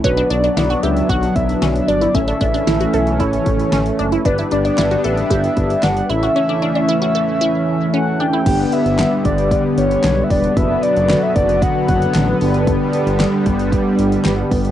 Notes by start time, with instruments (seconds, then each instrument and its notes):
0.04 analog synth bass B1, analog synth pad F#3 B3 D4, analog polysynth B3 D4 F#4, synth arpeggio sound C#4, soft synth lead B4, kick, closed hi-hat
0.17 synth arpeggio sound D4, closed hi-hat
0.30 analog synth bass B1, synth arpeggio sound D4, soft synth lead D5, closed hi-hat
0.44 synth arpeggio sound D4, closed hi-hat
0.57 analog synth bass B1, synth arpeggio sound E4, snare, closed hi-hat
0.70 synth arpeggio sound F#4, closed hi-hat
0.83 analog synth bass C#2, synth arpeggio sound G4, soft synth lead E5, closed hi-hat
0.97 closed hi-hat
1.09 analog synth bass B1, synth arpeggio sound F#4, soft synth lead F#5, kick, closed hi-hat
1.23 closed hi-hat
1.35 analog synth bass B1, soft synth lead E5, kick, closed hi-hat
1.49 closed hi-hat
1.62 analog synth bass B1, synth arpeggio sound C#4, snare, closed hi-hat
1.76 closed hi-hat
1.82 soft synth lead E5
1.88 analog synth bass G1, synth arpeggio sound D4, soft synth lead D5, closed hi-hat
2.01 synth arpeggio sound E4, closed hi-hat
2.14 analog synth bass A1, analog synth pad E3 A3 C#4, analog polysynth C#4 E4 A4, synth arpeggio sound C#4, soft synth lead E5, kick, closed hi-hat
2.28 synth arpeggio sound D4, closed hi-hat
2.41 analog synth bass A1, synth arpeggio sound D4, soft synth lead E5, kick, closed hi-hat
2.54 synth arpeggio sound D4, closed hi-hat
2.67 analog synth bass A1, synth arpeggio sound E4, snare, closed hi-hat
2.80 synth arpeggio sound F#4, closed hi-hat
2.93 analog synth bass B1, synth arpeggio sound A4, closed hi-hat
3.07 closed hi-hat
3.20 analog synth bass A1, synth arpeggio sound E4, soft synth lead C#5, kick, closed hi-hat
3.33 closed hi-hat
3.46 analog synth bass A1, kick, closed hi-hat
3.60 closed hi-hat
3.72 analog synth bass A1, synth arpeggio sound C#4, snare, closed hi-hat
3.86 closed hi-hat
3.99 analog synth bass F#1, synth arpeggio sound D4, closed hi-hat
4.12 synth arpeggio sound E4, closed hi-hat
4.25 analog synth bass G1, analog synth pad G3 B3 D4, analog polysynth D4 G4 B4, synth arpeggio sound D4, soft synth lead B4, kick, closed hi-hat
4.38 synth arpeggio sound E4, closed hi-hat
4.51 analog synth bass G1, synth arpeggio sound D4, soft synth lead D5, closed hi-hat
4.65 synth arpeggio sound D4, closed hi-hat
4.78 analog synth bass G1, synth arpeggio sound E4, snare, clap, closed hi-hat
4.91 synth arpeggio sound F#4, closed hi-hat
5.04 analog synth bass A1, synth arpeggio sound A4, soft synth lead E5, closed hi-hat
5.17 closed hi-hat
5.30 analog synth bass G1, synth arpeggio sound G4, kick, closed hi-hat
5.44 closed hi-hat
5.57 analog synth bass G1, kick, closed hi-hat
5.70 closed hi-hat
5.83 analog synth bass G1, synth arpeggio sound D4, soft synth lead F#5, snare, clap, closed hi-hat
5.97 closed hi-hat
6.09 analog synth bass A1, analog synth pad E3 A3 C#4, analog polysynth C#4 E4 A4, synth arpeggio sound E4, soft synth lead E5, closed hi-hat
6.23 synth arpeggio sound F#4, closed hi-hat
6.36 synth arpeggio sound C#4
6.49 synth arpeggio sound D4
6.62 synth arpeggio sound D4
6.75 synth arpeggio sound D4
6.88 synth arpeggio sound E4
7.02 synth arpeggio sound F#4
7.15 synth arpeggio sound A4
7.41 synth arpeggio sound E4
7.94 synth arpeggio sound C#4, soft synth lead F#5
8.20 synth arpeggio sound D4, soft synth lead G5
8.33 synth arpeggio sound E4
8.46 analog synth bass G1, analog synth pad D3 G3 B3, analog polysynth B3 D4 G4 B4, kick, closed hi-hat, crash
8.72 soft synth lead E5, closed hi-hat
8.86 analog synth bass G1, closed hi-hat
8.99 snare, clap, closed hi-hat
9.25 analog synth bass G1, soft synth lead D5, kick, closed hi-hat
9.38 closed hi-hat
9.51 soft synth lead D5, kick, closed hi-hat
9.78 analog synth bass G1, soft synth lead C#5, closed hi-hat
9.91 closed hi-hat
10.04 analog synth bass B1, snare, clap, closed hi-hat
10.24 soft synth lead E5
10.30 analog synth bass E1, soft synth lead D5, kick, open hi-hat
10.44 closed hi-hat
10.57 analog synth bass F#1, analog synth pad D3 F#3, analog polysynth B3 D4 F#4 B4, soft synth lead E5, kick, closed hi-hat
10.83 soft synth lead D5, closed hi-hat
10.96 analog synth bass F#1, closed hi-hat
11.10 snare, clap, closed hi-hat
11.23 soft synth lead E5
11.36 analog synth bass F#1, soft synth lead D5, kick, closed hi-hat
11.49 closed hi-hat
11.62 soft synth lead F#5, kick, closed hi-hat
11.88 analog synth bass F#1, soft synth lead F#5, kick, closed hi-hat
12.02 closed hi-hat
12.15 analog synth bass A1, snare, clap, closed hi-hat
12.41 analog synth bass G1, analog synth pad G3, analog polysynth B3 D4 G4 B4, open hi-hat
12.54 closed hi-hat
12.67 kick, closed hi-hat
12.93 closed hi-hat
13.07 analog synth bass G1, closed hi-hat
13.20 snare, clap, closed hi-hat
13.46 analog synth bass G1, kick, closed hi-hat
13.59 closed hi-hat
13.72 kick, closed hi-hat
13.99 analog synth bass G1, closed hi-hat
14.12 closed hi-hat
14.25 analog synth bass G1, snare, clap, closed hi-hat
14.52 analog synth bass G1, kick, open hi-hat
14.65 closed hi-hat